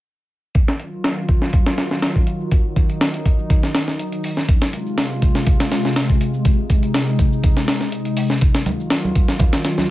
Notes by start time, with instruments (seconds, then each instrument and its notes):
0.55 ambient pad D#3 F#3 F4, kick, closed hi-hat
0.68 snare
0.80 closed hi-hat, shaker
0.93 shaker
1.04 snare, closed hi-hat
1.28 kick, closed hi-hat, shaker
1.42 snare, shaker
1.53 kick, closed hi-hat
1.66 snare
1.78 snare, closed hi-hat, shaker
1.91 snare, shaker
2.02 snare, closed hi-hat
2.16 kick
2.27 closed hi-hat, shaker
2.40 shaker
2.51 ambient pad D#4, kick, closed hi-hat
2.76 kick, closed hi-hat, shaker
2.89 closed hi-hat, shaker
3.01 snare, closed hi-hat
3.14 closed hi-hat
3.25 kick, closed hi-hat, shaker
3.39 shaker
3.50 kick, closed hi-hat
3.63 snare
3.75 snare, closed hi-hat, shaker
3.88 snare, shaker
3.99 closed hi-hat, shaker
4.12 closed hi-hat
4.24 open hi-hat, shaker
4.37 snare, shaker
4.48 ambient pad C3 G#3 F4, kick, closed hi-hat
4.62 snare
4.73 closed hi-hat, shaker
4.86 shaker
4.98 snare, closed hi-hat
5.22 kick, closed hi-hat, shaker
5.35 snare, shaker
5.47 kick, closed hi-hat, shaker
5.60 snare
5.72 snare, closed hi-hat, shaker
5.85 snare, shaker
5.96 snare, closed hi-hat
6.09 kick
6.21 closed hi-hat, shaker
6.34 shaker
6.45 ambient pad D#4, kick, closed hi-hat, shaker
6.70 kick, closed hi-hat, shaker
6.83 closed hi-hat, shaker
6.94 snare, closed hi-hat, shaker
7.08 closed hi-hat
7.19 kick, closed hi-hat, shaker
7.33 shaker
7.44 kick, closed hi-hat, shaker
7.57 snare
7.68 snare, closed hi-hat, shaker
7.81 snare, shaker
7.92 closed hi-hat, shaker
8.05 closed hi-hat
8.17 open hi-hat, shaker
8.30 snare, shaker
8.41 ambient pad D#3 F#3 F4, kick, closed hi-hat, shaker
8.55 snare
8.66 closed hi-hat, high conga, shaker
8.80 shaker
8.90 snare, closed hi-hat, shaker
9.05 high conga
9.15 kick, closed hi-hat, shaker
9.28 snare, shaker
9.39 kick, closed hi-hat, high conga, shaker
9.53 snare
9.65 snare, closed hi-hat, shaker
9.78 snare, high conga, shaker